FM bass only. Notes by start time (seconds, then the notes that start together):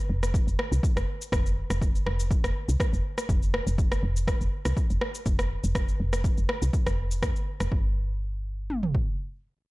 0.10 F1
0.47 F1
0.72 C2
0.96 F1
1.32 F1
1.70 F1
2.06 F1
2.44 F1
2.69 C2
2.93 F1
3.29 F1
3.67 F1
4.03 F1
4.41 F1
4.65 C2
4.90 F1
5.26 F1
5.64 F1
6.00 F1
6.38 F1
6.62 C2
6.87 F1
7.22 F2
7.60 F1
7.72 G1